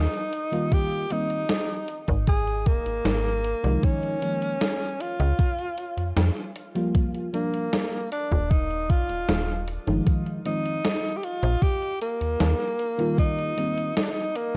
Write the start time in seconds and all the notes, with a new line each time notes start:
Already playing: D#4
0.14 closed hi-hat
0.33 closed hi-hat
0.51 D#3 G3 A#3 F4, closed hi-hat
0.72 G4, kick, closed hi-hat
0.92 closed hi-hat
1.10 D#3 G3 A#3 C4 D#4, closed hi-hat
1.30 closed hi-hat
1.49 snare, closed hi-hat
1.69 closed hi-hat
1.88 closed hi-hat
2.08 G#1, kick, closed hi-hat
2.27 G#4, kick, closed hi-hat
2.47 closed hi-hat
2.66 D#1 A#3, kick, closed hi-hat
2.86 G#1, closed hi-hat
3.05 G#1, snare, closed hi-hat
3.44 closed hi-hat
3.63 C2 D#3 F3 G#3 D#4, closed hi-hat
3.83 C#4, kick, closed hi-hat
4.03 closed hi-hat
4.21 D#3 F3 G#3 A#3, closed hi-hat
4.42 closed hi-hat
4.61 snare, closed hi-hat
4.81 closed hi-hat
5.00 F4, closed hi-hat
5.20 C#2, closed hi-hat
5.39 kick, closed hi-hat
5.59 closed hi-hat
5.78 closed hi-hat
5.98 F2, closed hi-hat
6.17 F2, snare, closed hi-hat
6.37 closed hi-hat
6.56 closed hi-hat
6.75 F3 G3 A#3 F4, closed hi-hat
6.95 kick, closed hi-hat
7.14 closed hi-hat
7.33 F3 G3 A#3 D4, closed hi-hat
7.54 closed hi-hat
7.73 snare, closed hi-hat
7.92 closed hi-hat
8.11 D4, closed hi-hat
8.31 D#1, kick, closed hi-hat
8.50 D#4, kick, closed hi-hat
8.70 closed hi-hat
8.90 A#1 F4, kick, closed hi-hat
9.09 D#1, closed hi-hat
9.28 D#1, snare, closed hi-hat
9.67 closed hi-hat
9.87 G1 D#3 F3 G#3 D#4, closed hi-hat
10.06 kick, closed hi-hat
10.26 closed hi-hat
10.45 D#3 F3 G#3 C4 D#4, closed hi-hat
10.65 closed hi-hat
10.84 snare, closed hi-hat
11.04 closed hi-hat
11.16 G4
11.23 F4, closed hi-hat
11.43 A#1, closed hi-hat
11.62 G4, kick, closed hi-hat
11.82 closed hi-hat
12.01 A#3, closed hi-hat
12.21 D#2, closed hi-hat
12.40 D#2, snare, closed hi-hat
12.60 closed hi-hat
12.79 closed hi-hat
12.98 D#3 G3 A#3 F4, closed hi-hat
13.18 D#4, kick, closed hi-hat
13.38 closed hi-hat
13.56 D#3 G3 A#3 C4, closed hi-hat
13.77 closed hi-hat
13.97 D#4, snare, closed hi-hat
14.03 D4
14.11 D#4
14.16 closed hi-hat
14.36 A#3, closed hi-hat